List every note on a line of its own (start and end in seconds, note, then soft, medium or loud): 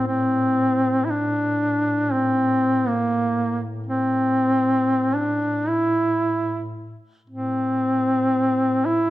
0.00 7.10 A2 soft
0.07 1.06 C4 medium
1.05 1.11 E4 medium
1.10 2.14 D4 medium
2.12 2.89 C4 medium
2.87 3.61 A#3 medium
3.86 5.16 C4 medium
5.15 5.69 D4 medium
5.68 6.75 E4 medium
7.27 9.10 A2 soft
7.27 8.86 C4 medium
8.85 9.10 E4 medium